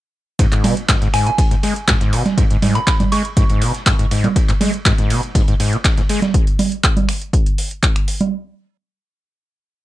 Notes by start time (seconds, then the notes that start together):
0.39 G#2, kick, closed hi-hat, ride
0.52 G#2, clap, closed hi-hat
0.64 B2, open hi-hat, ride, low conga
0.77 closed hi-hat
0.89 G#2, kick, snare, clap, closed hi-hat, ride
1.02 G#2, snare, closed hi-hat
1.14 G#2 G#5, finger snap, open hi-hat, ride
1.26 B2 G#5, closed hi-hat
1.38 kick, closed hi-hat, open hi-hat
1.51 G#2, closed hi-hat, ride
1.63 G#3, open hi-hat, ride
1.76 closed hi-hat
1.88 G#2, kick, snare, clap, closed hi-hat, ride
2.01 G#2, snare, closed hi-hat
2.13 B2, open hi-hat, ride
2.26 snare, closed hi-hat, low conga
2.38 G#2, kick, closed hi-hat, ride
2.50 G#2, closed hi-hat
2.62 G#2, open hi-hat, ride, low conga
2.75 B2 B5, closed hi-hat, ride
2.87 B5, kick, snare, clap, closed hi-hat, ride
3.00 G#2, closed hi-hat, low conga
3.12 G#3 C#6, open hi-hat, ride
3.25 closed hi-hat
3.37 G#2, kick, closed hi-hat, ride
3.50 G#2, closed hi-hat, ride
3.62 B2, open hi-hat, ride
3.75 snare, closed hi-hat
3.86 G#2, kick, clap, closed hi-hat, open hi-hat
3.99 G#2, closed hi-hat, ride
4.11 G#2, open hi-hat, ride
4.24 B2, closed hi-hat, ride, low conga
4.36 kick, closed hi-hat, ride
4.49 G#2, clap, closed hi-hat
4.61 G#3, open hi-hat, ride, low conga
4.74 closed hi-hat
4.86 G#2, kick, snare, clap, closed hi-hat, ride
4.98 G#2, snare, closed hi-hat
5.10 B2, open hi-hat, ride
5.23 closed hi-hat
5.35 G#2, kick, closed hi-hat, open hi-hat
5.48 G#2, closed hi-hat, ride
5.60 G#2, open hi-hat, ride
5.73 B2, closed hi-hat
5.85 kick, snare, clap, closed hi-hat, ride
5.97 G#2, snare, closed hi-hat
6.09 G#3, open hi-hat, ride
6.22 snare, closed hi-hat, low conga
6.34 kick, closed hi-hat
6.47 closed hi-hat
6.59 open hi-hat, low conga
6.72 closed hi-hat
6.84 kick, clap, closed hi-hat
6.97 closed hi-hat, low conga
7.09 finger snap, open hi-hat
7.22 closed hi-hat
7.33 kick, closed hi-hat
7.46 closed hi-hat
7.58 open hi-hat
7.71 closed hi-hat
7.83 kick, clap, closed hi-hat
7.96 finger snap, closed hi-hat
8.08 open hi-hat
8.21 closed hi-hat, low conga